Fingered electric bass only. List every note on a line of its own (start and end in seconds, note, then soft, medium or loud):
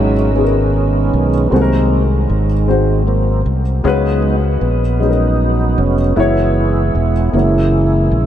0.00 1.09 G#1 medium
1.13 1.49 B1 medium
1.52 2.25 C2 medium
2.30 3.42 G#1 medium
3.46 3.81 C2 medium
3.85 4.58 C#2 medium
4.61 5.74 A#1 medium
5.78 6.14 F1 medium
6.17 6.91 F#1 medium
6.95 7.31 E1 medium
7.33 8.08 F#1 medium
8.12 8.26 A#1 medium